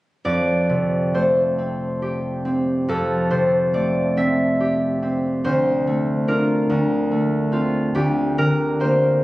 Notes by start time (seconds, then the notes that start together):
0.25 F2 D5
0.69 C3
1.14 A3 C5
1.58 C4
2.02 G4
2.45 C4
2.88 F2 A4
3.30 C3 C5
3.73 A3 D5
4.17 C4 E5
4.60 G4
5.03 C4
5.44 D2 C5
5.87 A3
6.28 D4 F4 A#4
6.70 D2
7.11 A3
7.52 C4 F4
7.95 D2 G4
8.38 D3 A#4
8.80 A#3 C5